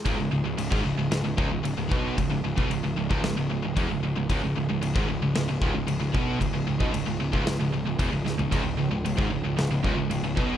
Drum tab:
CC |x---x---x---x---|x---x---x---x---|x---x---x---x---|x---x---x---x---|
SD |--------o-------|--------o-------|--------o-------|--------o-----o-|
FT |----------------|----------------|----------------|---------------o|
BD |o----o----o---o-|o--o---o----o---|o----o----o---o-|o--o---o----o---|

CC |x---x---x---x---|
SD |--------o-------|
FT |----------------|
BD |o----o----o---o-|